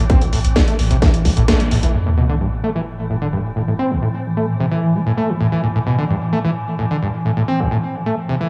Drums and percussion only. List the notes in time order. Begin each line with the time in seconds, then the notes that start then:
0.10 kick, closed hi-hat
0.21 closed hi-hat
0.33 open hi-hat
0.45 closed hi-hat
0.56 kick, snare, closed hi-hat
0.68 closed hi-hat
0.79 open hi-hat
0.91 closed hi-hat
1.02 kick, snare, closed hi-hat
1.14 closed hi-hat
1.25 kick, open hi-hat
1.37 closed hi-hat
1.48 kick, snare, closed hi-hat
1.60 closed hi-hat
1.71 open hi-hat
1.83 closed hi-hat